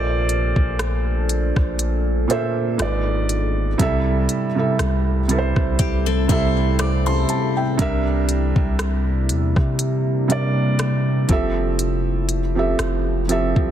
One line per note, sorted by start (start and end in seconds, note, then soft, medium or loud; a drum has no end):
0.00 0.53 A#1 loud
0.00 1.54 A#2 loud
0.00 1.54 A#3 loud
0.00 2.77 A#3 medium
0.00 2.77 D4 medium
0.00 1.55 A4 loud
0.00 2.77 A4 medium
0.00 1.56 C5 medium
0.00 1.56 D5 loud
0.29 closed hi-hat medium
0.56 1.52 A#1 loud
0.56 kick medium
0.79 cross-stick loud
0.79 closed hi-hat medium
1.29 closed hi-hat medium
1.56 2.26 A#1 medium
1.56 kick medium
1.56 cross-stick medium
1.79 closed hi-hat medium
2.28 2.79 A#2 medium
2.28 2.79 A#3 medium
2.28 2.80 A4 medium
2.28 2.80 C5 medium
2.28 closed hi-hat medium
2.32 2.81 E5 loud
2.78 3.75 G#1 loud
2.78 3.66 G#2 medium
2.78 3.67 G#3 medium
2.78 3.78 G#3 medium
2.78 3.78 B3 medium
2.78 3.78 F4 medium
2.78 3.67 F4 medium
2.78 3.68 B4 medium
2.78 cross-stick loud
2.78 closed hi-hat medium
2.82 3.68 D5 loud
3.29 closed hi-hat medium
3.78 4.27 C2 loud
3.78 4.45 C3 loud
3.78 11.25 C3 medium
3.78 4.45 G3 loud
3.78 7.75 C4 medium
3.78 7.75 E4 medium
3.78 4.46 E4 loud
3.78 7.75 G4 medium
3.78 7.75 A4 medium
3.78 4.46 A4 loud
3.78 kick loud
3.78 closed hi-hat medium
3.82 4.47 E5 loud
4.29 closed hi-hat medium
4.55 5.20 C3 medium
4.55 5.20 G3 medium
4.55 5.21 E4 medium
4.55 5.21 A4 medium
4.59 5.22 E5 medium
4.79 5.53 C2 loud
4.79 cross-stick loud
4.79 closed hi-hat medium
5.28 6.16 C3 medium
5.28 6.17 G3 medium
5.28 6.17 E4 medium
5.28 6.18 A4 medium
5.28 closed hi-hat medium
5.32 5.38 B4 medium
5.39 6.22 C5 medium
5.56 5.78 C2 loud
5.56 kick medium
5.56 cross-stick medium
5.79 6.27 C2 loud
5.79 6.05 G4 medium
5.79 kick medium
5.79 closed hi-hat medium
6.06 6.28 C4 medium
6.06 6.28 A4 medium
6.28 7.25 C2 loud
6.28 7.60 C3 medium
6.28 7.61 G3 medium
6.28 6.77 E4 medium
6.28 7.61 E4 medium
6.28 7.62 A4 medium
6.28 6.77 C5 medium
6.28 kick loud
6.28 closed hi-hat medium
6.32 6.81 E5 loud
6.79 7.05 D5 medium
6.79 7.05 D6 medium
6.79 cross-stick loud
6.79 closed hi-hat medium
7.06 7.76 E4 medium
7.06 7.76 C5 medium
7.06 7.28 A5 medium
7.06 7.28 C6 medium
7.29 7.55 A5 medium
7.29 closed hi-hat medium
7.57 7.80 E5 medium
7.57 8.04 G5 medium
7.78 8.53 C2 loud
7.78 9.54 C3 loud
7.78 9.54 G3 loud
7.78 11.26 G3 medium
7.78 11.26 A#3 medium
7.78 11.26 D4 medium
7.78 9.55 D4 loud
7.78 11.26 E4 medium
7.78 9.55 A#4 loud
7.78 kick loud
7.78 closed hi-hat medium
7.82 9.56 E5 loud
8.29 closed hi-hat medium
8.56 9.31 C2 loud
8.56 kick medium
8.79 cross-stick loud
8.79 closed hi-hat medium
9.29 9.55 E2 medium
9.29 closed hi-hat medium
9.56 11.25 C3 medium
9.56 kick medium
9.56 cross-stick medium
9.79 closed hi-hat medium
10.28 11.29 C3 medium
10.28 11.29 G3 medium
10.28 11.30 D4 medium
10.28 11.30 A#4 medium
10.28 closed hi-hat medium
10.32 11.31 D5 loud
10.79 cross-stick loud
10.79 closed hi-hat medium
11.28 12.75 F1 loud
11.28 12.38 F3 medium
11.28 13.71 F3 medium
11.28 13.71 C4 medium
11.28 12.38 C4 medium
11.28 13.71 E4 medium
11.28 13.71 G4 medium
11.28 12.39 G4 medium
11.28 13.71 A4 medium
11.28 12.39 A4 medium
11.28 kick loud
11.28 closed hi-hat medium
11.32 12.40 E5 loud
11.79 closed hi-hat medium
12.29 closed hi-hat medium
12.55 13.19 F3 medium
12.55 13.20 C4 medium
12.55 13.20 G4 medium
12.55 13.21 A4 medium
12.59 13.21 E5 medium
12.79 13.53 F1 loud
12.79 cross-stick loud
12.79 closed hi-hat medium
13.28 13.71 F3 medium
13.28 13.71 C4 medium
13.28 13.71 G4 medium
13.28 13.71 A4 medium
13.28 closed hi-hat medium
13.32 13.71 E5 loud
13.56 13.71 C2 loud
13.56 kick medium